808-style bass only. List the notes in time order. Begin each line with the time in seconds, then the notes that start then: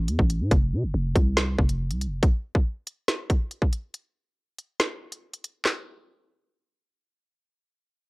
0.08 E2
0.19 A1
0.41 A2
0.51 F1
0.73 C3
0.83 F1
0.94 F1
1.16 C2
1.58 F1
1.91 C2
2.07 F1